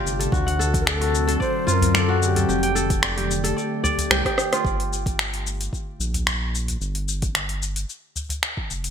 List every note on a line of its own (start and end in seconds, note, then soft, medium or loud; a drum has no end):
0.00 0.31 C3 medium
0.00 0.30 A3 medium
0.00 0.38 F4 loud
0.00 0.29 G4 medium
0.00 0.38 G4 medium
0.00 0.19 A4 loud
0.00 0.86 D5 medium
0.05 0.28 G1 medium
0.05 shaker medium
0.19 0.59 A4 medium
0.19 open hi-hat medium
0.19 shaker soft
0.32 1.37 D2 loud
0.32 4.61 D3 medium
0.32 2.46 F#3 medium
0.32 2.46 C4 medium
0.32 1.01 F#4 medium
0.32 kick loud
0.32 shaker soft
0.47 1.43 F#5 medium
0.47 open hi-hat soft
0.59 1.27 A4 loud
0.59 shaker medium
0.74 kick loud
0.74 open hi-hat medium
0.74 shaker soft
0.80 0.87 A#4 medium
0.86 1.40 A4 loud
0.86 1.39 D5 medium
0.86 finger snap loud
0.86 shaker soft
1.01 1.73 F#4 medium
1.01 open hi-hat soft
1.15 shaker medium
1.27 2.36 A4 loud
1.27 open hi-hat medium
1.27 shaker soft
1.40 1.68 C5 loud
1.40 1.94 D5 medium
1.40 kick medium
1.40 shaker soft
1.67 2.45 F#2 loud
1.67 2.15 F4 loud
1.67 1.74 C5 medium
1.67 shaker medium
1.73 1.95 A#4 loud
1.82 open hi-hat medium
1.82 udu medium
1.82 shaker soft
1.94 2.00 A#4 medium
1.94 3.02 D5 medium
1.94 finger snap medium
1.94 shaker soft
1.99 2.23 A4 medium
2.09 2.55 F#4 medium
2.23 2.28 A4 medium
2.23 shaker medium
2.27 2.76 G4 medium
2.35 2.75 A4 medium
2.35 open hi-hat medium
2.35 udu medium
2.35 shaker soft
2.49 3.53 F1 medium
2.49 4.63 A3 medium
2.49 3.17 G4 medium
2.49 4.63 G4 medium
2.49 shaker soft
2.63 3.56 G5 medium
2.63 open hi-hat soft
2.75 3.43 A4 loud
2.75 shaker medium
2.90 kick loud
2.90 open hi-hat medium
2.90 shaker soft
3.03 3.56 D5 medium
3.03 finger snap loud
3.03 shaker soft
3.17 4.10 G4 medium
3.17 open hi-hat soft
3.31 shaker medium
3.44 4.76 A4 loud
3.44 open hi-hat medium
3.44 shaker soft
3.57 3.83 D5 medium
3.57 shaker soft
3.84 4.94 D5 loud
3.84 udu medium
3.84 shaker medium
3.98 open hi-hat medium
3.98 udu medium
3.98 shaker soft
4.11 4.23 C2 medium
4.11 4.25 G4 medium
4.11 finger snap loud
4.11 cross-stick medium
4.11 shaker soft
4.25 5.67 G4 loud
4.25 kick medium
4.25 cross-stick medium
4.25 open hi-hat soft
4.38 cross-stick medium
4.38 shaker medium
4.52 6.04 F4 medium
4.52 cross-stick medium
4.52 open hi-hat medium
4.52 shaker soft
4.65 5.69 G1 medium
4.65 kick loud
4.65 shaker soft
4.80 open hi-hat soft
4.93 shaker medium
5.06 kick loud
5.06 open hi-hat medium
5.06 shaker soft
5.19 finger snap loud
5.19 shaker soft
5.34 open hi-hat soft
5.47 shaker medium
5.61 open hi-hat medium
5.61 shaker soft
5.73 kick medium
5.73 shaker soft
6.00 6.77 A#1 medium
6.00 shaker medium
6.14 open hi-hat medium
6.14 udu medium
6.14 shaker soft
6.27 finger snap medium
6.27 shaker soft
6.55 shaker medium
6.68 open hi-hat medium
6.68 udu medium
6.68 shaker soft
6.81 7.86 G1 medium
6.81 shaker soft
6.95 open hi-hat soft
7.08 shaker medium
7.22 kick loud
7.22 open hi-hat medium
7.22 shaker soft
7.35 finger snap medium
7.35 shaker soft
7.49 open hi-hat soft
7.63 shaker medium
7.76 open hi-hat medium
7.76 shaker soft
7.90 shaker soft
8.16 udu medium
8.16 shaker medium
8.29 open hi-hat medium
8.29 udu loud
8.29 shaker soft
8.43 finger snap medium
8.43 shaker soft
8.57 kick medium
8.70 8.90 F1 medium
8.70 shaker medium
8.84 open hi-hat medium
8.84 shaker soft